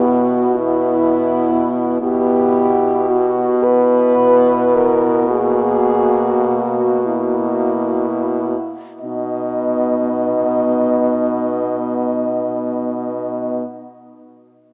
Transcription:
0, 0, Header, 1, 5, 480
1, 0, Start_track
1, 0, Key_signature, 5, "major"
1, 0, Tempo, 969305
1, 998, Time_signature, 6, 3, 24, 8
1, 998, Tempo, 1075269
1, 1958, Tempo, 1127820
1, 2918, Tempo, 1244813
1, 3398, Tempo, 1339286
1, 3878, Tempo, 1290323
1, 6008, End_track
2, 0, Start_track
2, 0, Title_t, "French horn"
2, 0, Program_c, 0, 60
2, 43, Note_on_c, 0, 66, 55
2, 283, Note_on_c, 0, 64, 69
2, 291, Note_off_c, 0, 66, 0
2, 913, Note_off_c, 0, 64, 0
2, 997, Note_on_c, 0, 67, 68
2, 1481, Note_on_c, 0, 66, 59
2, 1488, Note_off_c, 0, 67, 0
2, 1722, Note_on_c, 0, 71, 71
2, 1728, Note_off_c, 0, 66, 0
2, 2206, Note_on_c, 0, 70, 58
2, 2212, Note_off_c, 0, 71, 0
2, 2437, Note_off_c, 0, 70, 0
2, 2444, Note_on_c, 0, 68, 64
2, 2916, Note_off_c, 0, 68, 0
2, 2929, Note_on_c, 0, 66, 50
2, 3164, Note_on_c, 0, 64, 47
2, 3170, Note_off_c, 0, 66, 0
2, 3832, Note_off_c, 0, 64, 0
2, 3893, Note_on_c, 0, 63, 42
2, 5607, Note_off_c, 0, 63, 0
2, 6008, End_track
3, 0, Start_track
3, 0, Title_t, "French horn"
3, 0, Program_c, 1, 60
3, 0, Note_on_c, 1, 64, 49
3, 261, Note_off_c, 1, 64, 0
3, 268, Note_on_c, 1, 64, 51
3, 980, Note_off_c, 1, 64, 0
3, 995, Note_on_c, 1, 64, 53
3, 1568, Note_off_c, 1, 64, 0
3, 1724, Note_on_c, 1, 64, 51
3, 2435, Note_on_c, 1, 66, 49
3, 2442, Note_off_c, 1, 64, 0
3, 3155, Note_off_c, 1, 66, 0
3, 3157, Note_on_c, 1, 66, 39
3, 3720, Note_off_c, 1, 66, 0
3, 3875, Note_on_c, 1, 75, 34
3, 5598, Note_off_c, 1, 75, 0
3, 6008, End_track
4, 0, Start_track
4, 0, Title_t, "French horn"
4, 0, Program_c, 2, 60
4, 0, Note_on_c, 2, 59, 50
4, 261, Note_off_c, 2, 59, 0
4, 275, Note_on_c, 2, 59, 49
4, 983, Note_off_c, 2, 59, 0
4, 999, Note_on_c, 2, 59, 51
4, 1569, Note_off_c, 2, 59, 0
4, 1720, Note_on_c, 2, 59, 56
4, 2416, Note_off_c, 2, 59, 0
4, 2432, Note_on_c, 2, 58, 44
4, 3140, Note_off_c, 2, 58, 0
4, 3157, Note_on_c, 2, 58, 42
4, 3720, Note_off_c, 2, 58, 0
4, 3879, Note_on_c, 2, 59, 34
4, 5600, Note_off_c, 2, 59, 0
4, 6008, End_track
5, 0, Start_track
5, 0, Title_t, "French horn"
5, 0, Program_c, 3, 60
5, 0, Note_on_c, 3, 47, 50
5, 977, Note_off_c, 3, 47, 0
5, 999, Note_on_c, 3, 47, 55
5, 3715, Note_off_c, 3, 47, 0
5, 3880, Note_on_c, 3, 47, 36
5, 5601, Note_off_c, 3, 47, 0
5, 6008, End_track
0, 0, End_of_file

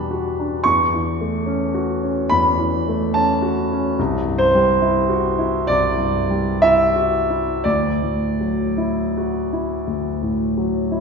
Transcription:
0, 0, Header, 1, 2, 480
1, 0, Start_track
1, 0, Tempo, 819672
1, 379, Time_signature, 4, 2, 24, 8
1, 855, Tempo, 839161
1, 3255, Tempo, 943396
1, 3735, Tempo, 1039861
1, 4215, Tempo, 1111111
1, 5175, Tempo, 1034483
1, 5705, End_track
2, 0, Start_track
2, 0, Title_t, "Grand piano"
2, 0, Program_c, 0, 0
2, 0, Control_c, 0, 64, 127
2, 0, Note_on_c, 0, 40, 38
2, 0, Note_on_c, 0, 47, 33
2, 0, Note_on_c, 0, 55, 36
2, 0, Note_on_c, 0, 62, 41
2, 0, Note_on_c, 0, 66, 35
2, 0, Note_on_c, 0, 81, 73
2, 0, Note_on_c, 0, 83, 81
2, 62, Note_off_c, 0, 66, 0
2, 62, Note_on_c, 0, 66, 38
2, 151, Note_off_c, 0, 62, 0
2, 231, Note_on_c, 0, 62, 40
2, 318, Note_off_c, 0, 66, 0
2, 356, Note_off_c, 0, 40, 0
2, 371, Note_off_c, 0, 83, 0
2, 372, Note_on_c, 0, 85, 87
2, 382, Note_on_c, 0, 40, 47
2, 386, Note_off_c, 0, 62, 0
2, 388, Control_c, 0, 64, 0
2, 391, Note_off_c, 0, 47, 0
2, 392, Note_off_c, 0, 55, 0
2, 394, Note_off_c, 0, 81, 0
2, 475, Control_c, 0, 64, 127
2, 550, Note_on_c, 0, 52, 35
2, 707, Note_on_c, 0, 57, 37
2, 796, Note_off_c, 0, 52, 0
2, 855, Note_on_c, 0, 61, 43
2, 954, Note_off_c, 0, 57, 0
2, 1018, Note_on_c, 0, 66, 44
2, 1110, Note_off_c, 0, 61, 0
2, 1183, Note_on_c, 0, 61, 41
2, 1276, Note_off_c, 0, 66, 0
2, 1317, Note_off_c, 0, 40, 0
2, 1333, Note_on_c, 0, 83, 88
2, 1335, Note_off_c, 0, 85, 0
2, 1344, Note_on_c, 0, 40, 45
2, 1439, Note_off_c, 0, 61, 0
2, 1501, Note_on_c, 0, 52, 38
2, 1668, Note_on_c, 0, 57, 44
2, 1758, Note_off_c, 0, 52, 0
2, 1816, Note_on_c, 0, 81, 82
2, 1819, Note_off_c, 0, 83, 0
2, 1824, Note_on_c, 0, 61, 47
2, 1922, Note_off_c, 0, 57, 0
2, 1978, Note_on_c, 0, 66, 47
2, 2058, Note_off_c, 0, 81, 0
2, 2079, Note_off_c, 0, 61, 0
2, 2147, Note_on_c, 0, 61, 46
2, 2233, Note_off_c, 0, 66, 0
2, 2279, Note_off_c, 0, 40, 0
2, 2302, Note_off_c, 0, 61, 0
2, 2302, Note_on_c, 0, 36, 54
2, 2308, Control_c, 0, 64, 0
2, 2394, Control_c, 0, 64, 127
2, 2459, Note_on_c, 0, 43, 37
2, 2528, Note_on_c, 0, 72, 87
2, 2622, Note_on_c, 0, 55, 44
2, 2708, Note_off_c, 0, 43, 0
2, 2777, Note_on_c, 0, 64, 45
2, 2867, Note_off_c, 0, 55, 0
2, 2935, Note_on_c, 0, 66, 47
2, 3026, Note_off_c, 0, 64, 0
2, 3101, Note_on_c, 0, 64, 45
2, 3192, Note_off_c, 0, 66, 0
2, 3234, Note_off_c, 0, 36, 0
2, 3251, Note_off_c, 0, 72, 0
2, 3264, Note_on_c, 0, 74, 90
2, 3273, Note_on_c, 0, 36, 47
2, 3354, Note_off_c, 0, 64, 0
2, 3416, Note_on_c, 0, 43, 39
2, 3584, Note_on_c, 0, 55, 39
2, 3671, Note_off_c, 0, 43, 0
2, 3739, Note_off_c, 0, 74, 0
2, 3744, Note_on_c, 0, 76, 93
2, 3751, Note_on_c, 0, 64, 45
2, 3835, Note_off_c, 0, 55, 0
2, 3899, Note_on_c, 0, 66, 43
2, 3993, Note_off_c, 0, 64, 0
2, 4059, Note_on_c, 0, 64, 38
2, 4152, Note_off_c, 0, 66, 0
2, 4205, Note_off_c, 0, 36, 0
2, 4215, Note_on_c, 0, 74, 79
2, 4219, Note_off_c, 0, 76, 0
2, 4220, Note_off_c, 0, 64, 0
2, 4221, Note_on_c, 0, 38, 49
2, 4225, Control_c, 0, 64, 0
2, 4316, Control_c, 0, 64, 127
2, 4379, Note_on_c, 0, 45, 33
2, 4546, Note_on_c, 0, 54, 36
2, 4638, Note_off_c, 0, 45, 0
2, 4707, Note_on_c, 0, 64, 38
2, 4803, Note_off_c, 0, 54, 0
2, 4878, Note_on_c, 0, 66, 37
2, 4961, Note_off_c, 0, 64, 0
2, 5032, Note_on_c, 0, 64, 37
2, 5121, Note_off_c, 0, 66, 0
2, 5160, Note_off_c, 0, 38, 0
2, 5181, Note_on_c, 0, 38, 39
2, 5277, Note_off_c, 0, 64, 0
2, 5341, Note_on_c, 0, 45, 33
2, 5506, Note_on_c, 0, 54, 36
2, 5594, Note_off_c, 0, 45, 0
2, 5655, Note_off_c, 0, 74, 0
2, 5665, Note_on_c, 0, 64, 39
2, 5705, Note_off_c, 0, 38, 0
2, 5705, Note_off_c, 0, 54, 0
2, 5705, Note_off_c, 0, 64, 0
2, 5705, End_track
0, 0, End_of_file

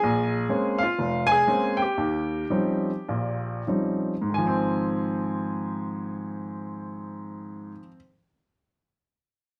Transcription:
0, 0, Header, 1, 2, 480
1, 0, Start_track
1, 0, Key_signature, -4, "major"
1, 0, Tempo, 465839
1, 48, Time_signature, 4, 2, 24, 8
1, 1010, Tempo, 493016
1, 1970, Tempo, 550964
1, 2930, Tempo, 632244
1, 3890, Tempo, 658617
1, 6290, Tempo, 672646
1, 7694, End_track
2, 0, Start_track
2, 0, Title_t, "Grand piano"
2, 0, Program_c, 0, 0
2, 0, Note_on_c, 0, 68, 76
2, 0, Note_on_c, 0, 80, 91
2, 34, Note_on_c, 0, 34, 72
2, 450, Note_off_c, 0, 34, 0
2, 507, Note_on_c, 0, 56, 53
2, 511, Note_on_c, 0, 58, 47
2, 512, Note_on_c, 0, 61, 57
2, 513, Note_on_c, 0, 60, 44
2, 808, Note_on_c, 0, 77, 89
2, 812, Note_off_c, 0, 68, 0
2, 853, Note_off_c, 0, 56, 0
2, 853, Note_on_c, 0, 65, 72
2, 855, Note_off_c, 0, 58, 0
2, 856, Note_off_c, 0, 60, 0
2, 856, Note_off_c, 0, 61, 0
2, 871, Note_off_c, 0, 80, 0
2, 1015, Note_on_c, 0, 29, 67
2, 1288, Note_on_c, 0, 80, 112
2, 1295, Note_off_c, 0, 65, 0
2, 1321, Note_off_c, 0, 77, 0
2, 1337, Note_on_c, 0, 68, 75
2, 1423, Note_off_c, 0, 29, 0
2, 1490, Note_on_c, 0, 56, 50
2, 1491, Note_on_c, 0, 58, 44
2, 1495, Note_on_c, 0, 60, 46
2, 1498, Note_on_c, 0, 61, 50
2, 1777, Note_off_c, 0, 68, 0
2, 1778, Note_on_c, 0, 79, 78
2, 1801, Note_off_c, 0, 80, 0
2, 1823, Note_off_c, 0, 56, 0
2, 1824, Note_off_c, 0, 58, 0
2, 1826, Note_off_c, 0, 60, 0
2, 1827, Note_on_c, 0, 67, 59
2, 1828, Note_off_c, 0, 61, 0
2, 1978, Note_on_c, 0, 39, 67
2, 2374, Note_off_c, 0, 39, 0
2, 2436, Note_on_c, 0, 53, 47
2, 2437, Note_on_c, 0, 55, 46
2, 2440, Note_on_c, 0, 63, 52
2, 2445, Note_on_c, 0, 60, 45
2, 2446, Note_on_c, 0, 61, 44
2, 2777, Note_off_c, 0, 53, 0
2, 2778, Note_off_c, 0, 55, 0
2, 2779, Note_off_c, 0, 63, 0
2, 2782, Note_off_c, 0, 60, 0
2, 2782, Note_off_c, 0, 61, 0
2, 2943, Note_on_c, 0, 34, 57
2, 2945, Note_on_c, 0, 46, 53
2, 3339, Note_off_c, 0, 34, 0
2, 3340, Note_off_c, 0, 46, 0
2, 3354, Note_off_c, 0, 79, 0
2, 3373, Note_off_c, 0, 67, 0
2, 3389, Note_on_c, 0, 53, 42
2, 3395, Note_on_c, 0, 63, 49
2, 3396, Note_on_c, 0, 60, 36
2, 3397, Note_on_c, 0, 61, 36
2, 3398, Note_on_c, 0, 55, 38
2, 3733, Note_off_c, 0, 53, 0
2, 3737, Note_off_c, 0, 60, 0
2, 3737, Note_off_c, 0, 61, 0
2, 3737, Note_off_c, 0, 63, 0
2, 3738, Note_off_c, 0, 55, 0
2, 3801, Note_on_c, 0, 44, 58
2, 3864, Note_on_c, 0, 51, 51
2, 3897, Note_on_c, 0, 80, 68
2, 3925, Note_on_c, 0, 53, 52
2, 3989, Note_on_c, 0, 60, 64
2, 6348, Note_off_c, 0, 44, 0
2, 6408, Note_off_c, 0, 51, 0
2, 6410, Note_off_c, 0, 80, 0
2, 6467, Note_off_c, 0, 53, 0
2, 6529, Note_off_c, 0, 60, 0
2, 7694, End_track
0, 0, End_of_file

